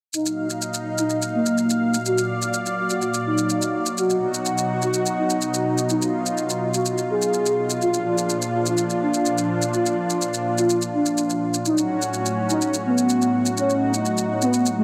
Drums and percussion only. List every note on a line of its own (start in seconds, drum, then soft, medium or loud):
0.14 shaker medium
0.26 shaker soft
0.50 shaker medium
0.62 shaker medium
0.74 shaker medium
0.98 shaker medium
1.10 shaker medium
1.22 shaker medium
1.46 shaker medium
1.58 shaker soft
1.70 shaker medium
1.94 shaker medium
2.06 shaker medium
2.18 shaker soft
2.42 shaker soft
2.54 shaker medium
2.66 shaker medium
2.90 shaker medium
3.02 shaker medium
3.14 shaker medium
3.38 shaker soft
3.50 shaker medium
3.62 shaker medium
3.86 shaker medium
3.98 shaker medium
4.10 shaker soft
4.34 shaker soft
4.46 shaker medium
4.58 shaker medium
4.82 shaker medium
4.94 shaker medium
5.06 shaker medium
5.30 shaker soft
5.42 shaker medium
5.54 shaker medium
5.78 shaker medium
5.90 shaker medium
6.02 shaker soft
6.26 shaker soft
6.37 shaker medium
6.50 shaker soft
6.74 shaker medium
6.85 shaker medium
6.98 shaker soft
7.22 shaker soft
7.33 shaker medium
7.46 shaker soft
7.70 shaker medium
7.82 shaker soft
7.94 shaker soft
8.18 shaker soft
8.29 shaker soft
8.42 shaker medium
8.66 shaker soft
8.78 shaker soft
8.90 shaker soft
9.14 shaker soft
9.26 shaker soft
9.38 shaker medium
9.62 shaker medium
9.73 shaker soft
9.86 shaker soft
10.10 shaker soft
10.21 shaker medium
10.34 shaker soft
10.58 shaker medium
10.70 shaker soft
10.82 shaker medium
11.06 shaker soft
11.17 shaker soft
11.30 shaker soft
11.54 shaker medium
11.65 shaker soft
11.78 shaker soft
12.02 shaker soft
12.13 shaker soft
12.26 shaker soft
12.50 shaker medium
12.61 shaker soft
12.74 shaker soft
12.98 shaker soft
13.09 shaker soft
13.22 shaker soft
13.46 shaker medium
13.57 shaker medium
13.70 shaker soft
13.94 shaker medium
14.05 shaker medium
14.18 shaker medium
14.42 shaker medium
14.53 shaker medium
14.66 shaker medium